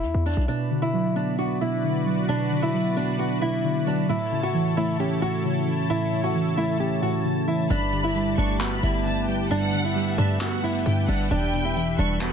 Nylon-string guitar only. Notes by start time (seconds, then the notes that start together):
Already playing: E4
0.26 D4
0.48 D4
0.82 E4
1.16 D4
1.38 F#4
1.61 E4
2.29 D4
2.62 E4
2.96 D4
3.19 F#4
3.42 E4
3.87 D4
4.09 E4
4.43 F#4
4.77 E4
5.00 G4
5.22 F#4
5.90 E4
6.24 F#4
6.57 E4
6.80 G4
7.02 F#4
7.48 E4
7.70 D4
8.04 E4
8.38 D4
8.61 F#4
8.83 E4
9.51 D4
9.84 E4
10.18 D4
10.41 F#4
10.63 E4
11.08 D4
11.31 D4
11.65 E4
11.98 D4
12.21 F#4